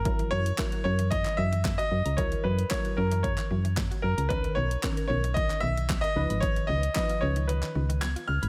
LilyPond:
<<
  \new Staff \with { instrumentName = "Grand piano" } { \time 4/4 \key fis \mixolydian \tempo 4 = 113 ais'8 cis''4 cis''8 dis''8 e''8. dis''8. | cis''8 b'8 cis''8 ais'8 cis''4 r8 ais'8 | b'8 cis''4 cis''8 dis''8 e''8. dis''8. | cis''8 dis''8 dis''8 cis''8 b'4 gis'''8 eis'''8 | }
  \new Staff \with { instrumentName = "Synth stab" } { \time 4/4 \key fis \mixolydian <fis e' ais'>4 <fis e' ais'>4. r4. | <fis e' ais'>4 <fis e' ais'>4. r4. | <dis cis' ais'>4 <dis cis' ais'>4. r4 <eis dis' b'>8~ | <eis dis' b'>8. r16 <eis dis' b'>4. r4. | }
  \new Staff \with { instrumentName = "Synth arpeggio sound" } { \clef bass \time 4/4 \key fis \mixolydian e16 e16 e16 r16 ais16 fis'16 cis'16 e16 e16 e16 e16 e16 ais16 fis'16 r16 ais''16 | e16 e16 e16 r16 ais16 fis'16 cis'16 e16 e16 e16 e16 e16 ais16 fis'16 r16 ais''16 | dis16 dis16 dis16 r16 b16 ais'16 cis'16 dis16 dis16 dis16 dis16 dis16 b16 ais'16 r16 b''16 | dis16 dis16 dis16 r16 b16 eis'16 cis'16 dis16 dis16 dis16 dis16 dis16 b16 eis'16 r16 b''16 | }
  \new Staff \with { instrumentName = "FM bass" } { \clef bass \time 4/4 \key fis \mixolydian gis,,8 fis,8 r8 fis,4 fis,4 fis,16 cis,16~ | cis,8 fis,8 r8 fis,4 fis,4 fis,16 cis,16~ | cis,8 b,,8 r8 b,,4 b,,4 cis,16 gis,,16~ | gis,,8 cis,8 r8 cis,4 cis,4 cis,16 gis,,16 | }
  \new DrumStaff \with { instrumentName = "Drums" } \drummode { \time 4/4 <hh bd>16 hh8 hh16 <hc hh bd sn>16 hh8 hh16 <hh bd>16 <hc hh>8 hh16 <hc hh bd sn>16 hh8 hh16 | <hh bd>16 hh8 hh16 <hc hh bd sn>16 hh8 hh16 <hh bd>16 <hc hh>8 hh16 <hc hh bd sn>16 hh8 hh16 | <hh bd>16 hh8 hh16 <hc hh bd sn>16 hh8 hh16 <hh bd>16 <hc hh>8 hh16 <hc hh bd sn>16 hh8 hh16 | <hh bd>16 hh8 hh16 <hc hh bd sn>16 hh8 hh16 hh16 <hc hh>8 hh16 <hc hh sn>16 hh8 hh16 | }
>>